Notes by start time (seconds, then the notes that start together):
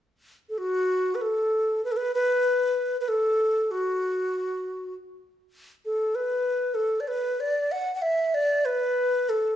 0.49 A4
0.58 F#4
1.15 B4
1.21 A4
1.85 B4
1.92 A4
1.97 B4
2.14 B4
3.00 B4
3.08 A4
3.71 F#4
5.85 A4
6.15 B4
6.74 A4
7.00 D5
7.08 B4
7.40 D5
7.72 F#5
7.95 F#5
8.02 E5
8.34 D5
8.65 B4
9.29 A4